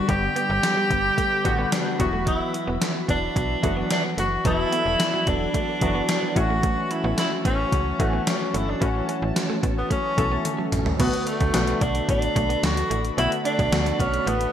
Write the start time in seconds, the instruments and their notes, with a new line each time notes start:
Already playing: synth keys D3 G3 B3 G4, string machine G3 D5 B5, tenor saxophone F#4
0.09 fm bass G1, synth keys D3 G3 B3 G4, clean electric guitar G3, tenor saxophone G4, kick, closed hi-hat
0.23 muted clean electric guitar stroke
0.36 clean electric guitar B3, closed hi-hat
0.50 fm bass G1
0.63 muted clean electric guitar stroke, snare, closed hi-hat
0.77 clean electric guitar G3
0.90 fm bass G1, clean electric guitar B3, kick, closed hi-hat
1.18 clean electric guitar A3, kick, closed hi-hat
1.44 fm bass A1, synth keys D3 G3 B3 F#4, muted clean electric guitar stroke, kick, closed hi-hat
1.58 clean electric guitar B3
1.72 tenor saxophone D4, snare, closed hi-hat
1.86 clean electric guitar G3
1.99 fm bass E1, synth keys E3 F#3 B3 F#4, string machine F#4 E5, tenor saxophone F#4, muted clean electric guitar stroke, kick, closed hi-hat
2.13 clean electric guitar A3
2.26 clean electric guitar F#3, tenor saxophone E4, kick, closed hi-hat
2.54 muted clean electric guitar stroke, closed hi-hat
2.67 fm bass E1, clean electric guitar B3
2.82 snare, closed hi-hat
3.08 fm bass E1, clean electric guitar B3, tenor saxophone D4, kick, closed hi-hat
3.36 fm bass B1, muted clean electric guitar stroke, kick, closed hi-hat
3.62 fm bass F#1, synth keys E3 F#3 B3 F#4, clean electric guitar A3, kick, closed hi-hat
3.77 clean electric guitar B3
3.90 tenor saxophone D4, snare, closed hi-hat
4.18 fm bass F#1, clean electric guitar A3, tenor saxophone F#4, string machine D5, closed hi-hat
4.44 fm bass E1, synth keys E3 F#3 B3 A4, clean electric guitar F#3, tenor saxophone E4, kick, closed hi-hat
4.59 muted clean electric guitar stroke
4.72 clean electric guitar B3, closed hi-hat
4.86 fm bass E1
5.00 muted clean electric guitar stroke, snare, closed hi-hat
5.14 clean electric guitar F#3
5.27 fm bass E1, clean electric guitar B3, tenor saxophone D4, kick, closed hi-hat
5.54 clean electric guitar A3, kick, closed hi-hat
5.81 fm bass F#1, synth keys E3 F#3 B3 F#4, muted clean electric guitar stroke, kick, closed hi-hat
5.95 clean electric guitar B3
6.09 snare, closed hi-hat
6.23 clean electric guitar F#3
6.35 fm bass A1, synth keys E3 A3 C#4 F#4, tenor saxophone F#4, string machine C#5 A5, kick, closed hi-hat
6.50 clean electric guitar A3
6.63 clean electric guitar A3, kick, closed hi-hat
6.91 tenor saxophone E4, muted clean electric guitar stroke, closed hi-hat
7.04 fm bass A1, clean electric guitar B3
7.18 tenor saxophone E4, snare, closed hi-hat
7.45 fm bass A1, clean electric guitar B3, tenor saxophone C#4, kick, closed hi-hat
7.72 fm bass C#2, muted clean electric guitar stroke, kick, closed hi-hat
7.99 fm bass A1, synth keys E3 A3 C#4 F#4, clean electric guitar A3, tenor saxophone A3, kick, closed hi-hat
8.13 clean electric guitar B3
8.27 tenor saxophone C#4, snare, closed hi-hat
8.54 fm bass G1, clean electric guitar A3, tenor saxophone E4, closed hi-hat
8.69 tenor saxophone D4
8.80 fm bass A1, synth keys E3 A3 C#4 F#4, clean electric guitar A3, tenor saxophone C#4, kick, closed hi-hat
8.95 muted clean electric guitar stroke
9.09 clean electric guitar C#4, closed hi-hat
9.22 fm bass A1
9.36 muted clean electric guitar stroke, snare, closed hi-hat
9.50 clean electric guitar A3
9.63 fm bass A1, clean electric guitar B3, kick, closed hi-hat
9.78 tenor saxophone B3
9.90 clean electric guitar A3, tenor saxophone C#4, kick, closed hi-hat
10.17 fm bass B1, synth keys E3 A3 C#4 A4, muted clean electric guitar stroke, kick, closed hi-hat
10.32 clean electric guitar B3
10.45 closed hi-hat, high tom
10.59 clean electric guitar F#3
10.72 fm bass A1, muted clean electric guitar stroke, closed hi-hat, mid tom
10.86 clean electric guitar A3, floor tom
10.99 fm bass B1, synth keys D3 A3 B3 F#4, clean electric guitar B3, tenor saxophone B3, string machine A4 D5 B5, kick, closed hi-hat, crash
11.13 closed hi-hat
11.27 tenor saxophone A3, muted clean electric guitar stroke, closed hi-hat
11.40 fm bass D2, clean electric guitar D4, kick, closed hi-hat
11.53 fm bass B1, synth keys D3 A3 B3 F#4, snare, closed hi-hat
11.67 closed hi-hat
11.81 fm bass B1, clean electric guitar D4, tenor saxophone D4, kick, closed hi-hat
11.95 closed hi-hat
12.09 fm bass A1, tenor saxophone D4, muted clean electric guitar stroke, kick, closed hi-hat
12.22 closed hi-hat
12.36 fm bass B1, clean electric guitar A3, kick, closed hi-hat
12.49 clean electric guitar B3, closed hi-hat
12.63 fm bass D2, tenor saxophone F#4, snare, closed hi-hat
12.77 closed hi-hat
12.91 fm bass A1, clean electric guitar A3, closed hi-hat
13.05 closed hi-hat
13.17 fm bass B1, synth keys D3 A3 B3 F#4, clean electric guitar B3, tenor saxophone E4, closed hi-hat
13.32 muted clean electric guitar stroke, closed hi-hat
13.45 clean electric guitar D4, tenor saxophone D4, closed hi-hat
13.59 fm bass B1, kick, closed hi-hat
13.72 fm bass D2, synth keys D3 A3 B3 F#4, muted clean electric guitar stroke, snare, closed hi-hat
13.86 clean electric guitar A3, closed hi-hat
14.00 fm bass B1, clean electric guitar B3, tenor saxophone C#4, kick, closed hi-hat
14.14 closed hi-hat
14.27 fm bass A1, clean electric guitar A3, tenor saxophone B3, closed hi-hat
14.41 closed hi-hat